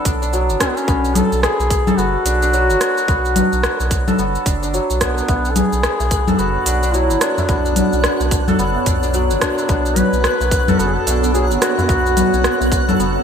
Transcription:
Already playing: santur F#3 A3 B3 A4, duduk D4
0.05 sub bass B1, santur D4, kick, open hi-hat, shaker
0.22 santur D4, shaker
0.33 santur F#3, shaker
0.49 sub bass F#1, shaker
0.60 duduk C#4, santur D4, kick, cross-stick, open hi-hat, shaker
0.69 duduk B3
0.77 duduk C#4, shaker
0.88 sub bass B1, santur B3, kick, shaker
1.05 shaker
1.16 duduk A4, open hi-hat, low conga, shaker
1.32 sub bass B1, shaker
1.42 duduk G#4, cross-stick, shaker
1.60 sub bass B1, shaker
1.71 kick, open hi-hat, shaker
1.87 santur A4, low conga, shaker
1.98 sub bass F#1, santur B3, duduk F#4, shaker
2.25 sub bass B1, santur D4, open hi-hat, shaker
2.42 santur D4, shaker
2.53 santur F#3, shaker
2.69 sub bass F#1, shaker
2.81 santur D4, cross-stick, open hi-hat, shaker
2.98 shaker
3.08 sub bass B1, santur B3, kick, shaker
3.25 shaker
3.36 open hi-hat, low conga, shaker
3.53 sub bass B1, shaker
3.63 cross-stick, shaker
3.80 sub bass B1, shaker
3.91 kick, open hi-hat, shaker
4.07 santur A4, low conga, shaker
4.19 sub bass F#1, santur B3, shaker
4.35 shaker
4.46 sub bass F#1, santur D4, kick, open hi-hat, shaker
4.63 santur D4, shaker
4.74 santur F#3, shaker
4.90 sub bass B1, shaker
5.01 duduk B3, santur D4, kick, cross-stick, open hi-hat, shaker
5.18 shaker
5.28 sub bass B1, santur B3, ambient pad B3 F#4 C#5, synth texture F#5, kick, tabla tin, shaker
5.45 shaker
5.51 duduk A4
5.56 duduk G#4, open hi-hat, low conga, shaker
5.73 sub bass B1, shaker
5.83 cross-stick, shaker
6.00 sub bass B1, tabla tin, shaker
6.11 kick, open hi-hat, shaker
6.28 santur A4, low conga, tabla ge, shaker
6.33 duduk G#4
6.38 sub bass F#1, santur B3, duduk F#4, shaker
6.66 sub bass B1, santur D4, open hi-hat, tabla na, shaker
6.83 santur D4, shaker
6.94 santur F#3, duduk E4, shaker
7.10 sub bass F#1, shaker
7.21 santur D4, duduk D4, cross-stick, open hi-hat, tabla tin, shaker
7.38 tabla na, tabla ge, shaker
7.49 sub bass B1, santur B3, kick, tabla tin, shaker
7.65 shaker
7.76 open hi-hat, low conga, shaker
7.93 sub bass B1, shaker
8.04 cross-stick, shaker
8.20 sub bass B1, tabla tin, shaker
8.31 kick, open hi-hat, shaker
8.48 santur A4, low conga, tabla ge, shaker
8.58 sub bass F#1, santur B3, shaker
8.76 tabla tin
8.86 sub bass B1, santur D4, kick, open hi-hat, tabla ge, shaker
9.03 santur D4, shaker
9.14 santur F#3, shaker
9.30 sub bass F#1, shaker
9.41 duduk D4, santur D4, kick, cross-stick, open hi-hat, shaker
9.58 tabla na, tabla tin, shaker
9.69 sub bass B1, santur B3, kick, tabla tin, shaker
9.86 shaker
9.96 duduk B4, open hi-hat, low conga, shaker
10.13 sub bass B1, shaker
10.24 cross-stick, shaker
10.40 sub bass B1, tabla tin, shaker
10.51 kick, open hi-hat, shaker
10.68 santur A4, low conga, tabla ge, shaker
10.79 sub bass F#1, santur B3, duduk A4, shaker
10.87 duduk G#4
10.95 duduk A4
11.07 sub bass B1, santur D4, open hi-hat, tabla na, shaker
11.23 santur D4, shaker
11.34 santur F#3, duduk G#4, shaker
11.51 sub bass F#1, shaker
11.61 santur D4, duduk F#4, cross-stick, open hi-hat, tabla tin, shaker
11.78 tabla na, tabla ge, shaker
11.88 sub bass B1, santur B3, kick, tabla tin, shaker
12.06 shaker
12.16 open hi-hat, tabla na, low conga, shaker
12.33 sub bass B1, shaker
12.44 cross-stick, shaker
12.60 sub bass B1, tabla tin, shaker
12.71 kick, open hi-hat, tabla na, shaker
12.88 santur A4, low conga, tabla ge, shaker
12.99 sub bass F#1, santur B3, shaker
13.16 tabla tin

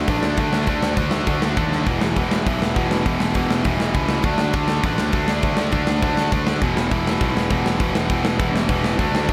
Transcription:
0.08 picked electric bass A1, distorted electric guitar D3 A3 D4, kick, open hi-hat
0.23 picked electric bass D2, snare
0.37 picked electric bass D2, distorted electric guitar D3 A3 D4, kick, open hi-hat
0.52 picked electric bass D2, snare
0.67 picked electric bass D2, distorted electric guitar D3 A3 D4, kick, open hi-hat
0.82 picked electric bass D2, snare
0.97 picked electric bass D2, distorted electric guitar D3 A3 D4, kick, open hi-hat
1.11 picked electric bass D2, snare
1.27 picked electric bass D2, distorted electric guitar D3 A3 D4, kick, open hi-hat
1.42 picked electric bass D2, snare
1.57 picked electric bass D#2, distorted electric guitar D3 A3 D4, kick, open hi-hat
1.72 snare
1.86 picked electric bass E1, distorted electric guitar E2 B2 E3, kick, open hi-hat
2.01 picked electric bass E1, snare
2.16 picked electric bass E1, distorted electric guitar E2 B2 E3, kick, open hi-hat
2.31 snare
2.46 picked electric bass B1, distorted electric guitar E2 B2 E3, kick, open hi-hat
2.61 picked electric bass E1, snare
2.76 picked electric bass E1, distorted electric guitar E2 B2 E3, kick, open hi-hat
2.90 picked electric bass E1, snare
3.06 picked electric bass E1, distorted electric guitar E2 B2 E3, kick, open hi-hat
3.20 picked electric bass E1, snare
3.34 picked electric bass E1, distorted electric guitar E2 B2 E3, kick, open hi-hat
3.51 picked electric bass E1, snare
3.64 picked electric bass E1, distorted electric guitar E2 B2 E3, kick, open hi-hat
3.80 picked electric bass E1, snare
3.94 picked electric bass C#2, distorted electric guitar E2 B2 E3, kick, open hi-hat
4.09 snare
4.22 picked electric bass D2, distorted electric guitar D3 A3 D4, kick, open hi-hat
4.38 picked electric bass D2, snare
4.53 picked electric bass D2, distorted electric guitar D3 A3 D4, kick, open hi-hat
4.68 snare
4.84 picked electric bass A1, distorted electric guitar D3 A3 D4, kick, open hi-hat
4.98 picked electric bass D2, snare
5.12 picked electric bass D2, distorted electric guitar D3 A3 D4, kick, open hi-hat
5.28 picked electric bass D2, snare
5.43 picked electric bass D2, distorted electric guitar D3 A3 D4, kick, open hi-hat
5.57 picked electric bass D2, snare
5.72 picked electric bass D2, distorted electric guitar D3 A3 D4, kick, open hi-hat
5.87 picked electric bass D2, snare
6.03 picked electric bass D2, distorted electric guitar D3 A3 D4, kick, open hi-hat
6.17 picked electric bass D2, snare
6.32 picked electric bass D2, distorted electric guitar D3 A3 D4, kick, open hi-hat
6.47 snare
6.62 picked electric bass E1, distorted electric guitar E2 B2 E3, kick, open hi-hat
6.76 picked electric bass E1, snare
6.91 picked electric bass E1, distorted electric guitar E2 B2 E3, kick, open hi-hat
7.07 snare
7.21 picked electric bass B1, distorted electric guitar E2 B2 E3, kick, open hi-hat
7.36 picked electric bass E1, snare
7.50 picked electric bass E1, distorted electric guitar E2 B2 E3, kick, open hi-hat
7.66 picked electric bass E1, snare
7.80 picked electric bass E1, distorted electric guitar E2 B2 E3, kick, open hi-hat
7.95 picked electric bass E1, snare
8.10 picked electric bass E1, distorted electric guitar E2 B2 E3, kick, open hi-hat
8.24 picked electric bass E1, snare
8.39 picked electric bass E1, distorted electric guitar E2 B2 E3, kick, open hi-hat
8.53 picked electric bass E1, snare
8.69 picked electric bass E1, distorted electric guitar E2 B2 E3, kick, open hi-hat
8.84 snare
8.99 picked electric bass D2, distorted electric guitar D3 A3 D4, kick, open hi-hat
9.14 picked electric bass D2, snare
9.29 picked electric bass D2, distorted electric guitar A3 D4, kick, open hi-hat

